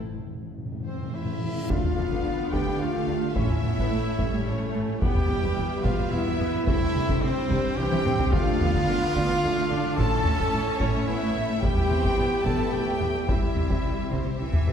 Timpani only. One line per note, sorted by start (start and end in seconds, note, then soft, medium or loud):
0.04 0.10 A2 soft
0.11 0.18 A2 soft
0.19 0.25 A2 soft
0.27 0.33 A2 soft
0.34 0.41 A2 soft
0.43 0.49 A2 soft
0.50 0.57 A2 medium
0.58 0.64 A2 soft
0.65 0.71 A2 medium
0.72 0.79 A2 medium
0.80 0.86 A2 medium
0.87 0.93 A2 medium
0.94 1.01 A2 medium
1.02 1.09 A2 medium
1.10 1.17 A2 medium
1.18 1.23 A2 medium
1.25 1.31 A2 medium
1.32 1.39 A2 medium
1.40 1.47 A2 medium
1.49 1.54 A2 medium
1.55 1.62 A2 medium
1.63 1.70 A2 medium
8.33 9.11 D3 medium